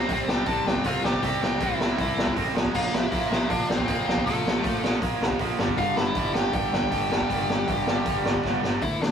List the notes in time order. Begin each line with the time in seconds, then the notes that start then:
Already playing: G3 C4 C5
0.08 C2 C3 G3 C4, kick, open hi-hat
0.28 C2 C3 G3 C4 G4 G5, snare
0.46 C2 C3 G3 C4 A4 A5, kick, open hi-hat
0.66 C2 G4 G5, snare
0.75 kick
0.84 C2 C3 G3 C4 F4 F5, kick, open hi-hat
1.03 C2 C3 G3 C4 G4 G5, snare
1.13 kick
1.22 C2 C3 G3 C4, kick, open hi-hat
1.42 C2 G4 G5, snare
1.61 C2 C3 G3 C4 E4 E5, kick, open hi-hat
1.79 C2 C3 G3 C4, snare
1.98 C2 C3 G3 C4, kick, open hi-hat
2.17 C2, snare
2.27 kick
2.36 A1 C3 G3 C4, kick, open hi-hat
2.55 A#1 A#2 F3 A#3, snare
2.65 kick
2.74 A#1 A#2 F3 A#3 F4 F5, kick, crash
2.93 A#1 E4 E5, snare
3.12 A#1 A#2 F3 A#3, kick, open hi-hat
3.31 A#1 A#2 F3 A#3, snare
3.50 A#1 A#2 F3 A#3 D4 D5, kick, open hi-hat
3.69 A#1 C4 C5, snare
3.79 kick
3.88 A#1 A#2 F3 A#3 C4 C5, kick, open hi-hat
4.07 A#1 A#2 F3 A#3, snare
4.17 kick
4.26 A#1 A#2 F3 A3 A#3 A4, kick, open hi-hat
4.45 A#1, snare
4.63 A#1 A#2 F3 A#3, kick, open hi-hat
4.82 A#1 A#2 F3 A#3, snare
5.02 A#1 A#2 F3 A#3, kick, open hi-hat
5.21 A#1, snare
5.30 kick
5.39 A#1 A#2 F3 A#3, kick, open hi-hat
5.58 G1 G2 D3 G3, snare
5.68 kick
5.76 G1 G2 D3 G3 F4 F5, kick, open hi-hat
5.96 G1 E4 E5, snare
6.14 G1 G2 D3 G3, kick, open hi-hat
6.34 G1 G2 D3 G3 G4 G5, snare
6.53 G1 G2 D3 G3 G4 G5, kick, open hi-hat
6.72 G1, snare
6.82 kick
6.91 G1 G2 D3 G3, kick, open hi-hat
7.10 G1 G2 D3 G3, snare
7.20 kick
7.29 G1 G2 D3 G3, kick, open hi-hat
7.48 G1, snare
7.67 G1 G2 D3 G3, kick, open hi-hat
7.86 G1 G2 D3 G3, snare
8.05 G1 G2 D3 G3, kick, open hi-hat
8.25 G1, snare
8.34 kick
8.42 G1 G2 D3 G3, kick, snare
8.62 G1 G2 D3 G3, snare
8.81 D2 D3 A3 D4 E4 E5, kick, open hi-hat
9.00 D2 D3 A3 D4 D5, snare